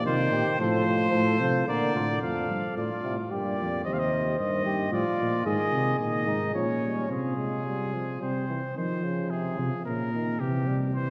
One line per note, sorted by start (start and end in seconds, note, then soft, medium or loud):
0.06 0.31 C3 medium
0.06 0.59 D#3 medium
0.06 0.18 F4 medium
0.06 0.59 C5 medium
0.32 0.44 A#2 medium
0.32 0.59 G4 medium
0.59 1.12 A2 medium
0.59 1.39 F3 loud
0.59 0.86 A4 medium
0.59 1.66 C5 medium
0.87 1.12 C5 medium
1.13 1.42 A2 medium
1.13 1.66 A4 medium
1.40 1.67 C3 medium
1.40 1.67 F3 medium
1.67 1.94 A#2 medium
1.67 2.21 D3 medium
1.67 1.95 A#4 medium
1.67 2.21 D5 medium
1.95 2.21 A2 medium
1.95 2.08 F4 medium
2.22 2.48 F2 medium
2.22 2.87 F3 medium
2.22 2.73 A4 medium
2.22 2.73 F5 medium
2.49 2.62 G2 medium
2.77 2.89 A2 medium
2.77 3.33 F4 medium
2.77 3.15 D5 medium
3.04 3.33 A2 soft
3.04 3.16 C3 medium
3.31 3.59 G2 medium
3.31 3.84 A#2 medium
3.31 3.85 G4 medium
3.31 3.84 D5 medium
3.59 3.85 F2 medium
3.84 4.38 D#2 medium
3.84 4.38 C3 medium
3.84 4.64 C5 medium
3.84 3.94 D#5 medium
3.93 4.00 F5 medium
3.99 4.39 D#5 medium
4.38 4.64 G2 medium
4.38 4.91 D#3 medium
4.38 4.92 D#5 medium
4.65 4.91 G2 medium
4.65 4.92 G4 medium
4.92 5.04 A2 medium
4.92 5.44 F3 medium
4.92 5.45 F4 medium
4.92 5.45 D5 medium
5.18 5.45 A#2 medium
5.46 5.58 G#2 medium
5.46 5.98 D#3 medium
5.46 6.25 G#4 medium
5.46 5.99 D#5 medium
5.72 5.99 C3 medium
5.99 6.28 A#2 medium
5.99 6.53 D#3 medium
5.99 6.53 D#5 medium
6.27 6.54 G#2 medium
6.27 6.54 D#4 medium
6.54 7.09 A#2 medium
6.54 6.66 F3 medium
6.54 7.09 C#4 medium
6.54 7.09 C#5 medium
6.81 7.08 G3 medium
7.09 8.20 C3 medium
7.09 7.37 C4 medium
7.09 8.19 F4 medium
7.09 8.20 G#4 medium
7.37 7.65 G#3 medium
7.66 7.95 G3 medium
7.94 8.22 F3 medium
8.21 8.76 C3 medium
8.21 8.48 G3 medium
8.21 8.76 C4 medium
8.21 8.76 C5 medium
8.48 8.61 E3 medium
8.76 9.05 D#3 medium
8.76 9.55 F3 medium
8.76 9.32 C5 medium
9.04 9.32 C#3 medium
9.30 9.61 C3 medium
9.30 9.85 G#4 medium
9.58 9.71 C3 medium
9.58 9.86 F3 medium
9.85 10.39 A#2 medium
9.85 10.13 C#3 medium
9.85 10.41 A#4 medium
10.14 10.40 D#3 medium
10.40 11.10 C3 medium
10.40 10.69 E3 medium
10.40 10.78 G4 medium
10.67 10.94 G3 medium
10.94 11.10 E3 medium
10.94 11.10 C5 medium